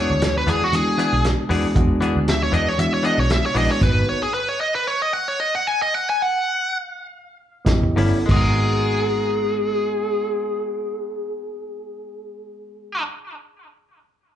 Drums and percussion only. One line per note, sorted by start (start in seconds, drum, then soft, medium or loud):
0.22 snare loud
0.22 closed hi-hat medium
0.47 closed hi-hat medium
0.73 closed hi-hat medium
0.99 closed hi-hat medium
1.24 snare loud
1.24 closed hi-hat medium
1.50 open hi-hat medium
1.76 kick loud
1.76 closed hi-hat medium
2.02 closed hi-hat medium
2.28 snare loud
2.28 closed hi-hat medium
2.53 closed hi-hat medium
2.79 closed hi-hat medium
3.04 closed hi-hat medium
3.30 snare loud
3.30 closed hi-hat medium
3.55 open hi-hat medium
3.81 kick loud
3.81 closed hi-hat medium
3.81 crash medium
7.66 kick medium
7.66 snare loud
7.66 closed hi-hat medium
7.83 kick medium
7.97 open hi-hat medium
8.29 kick loud
8.29 crash medium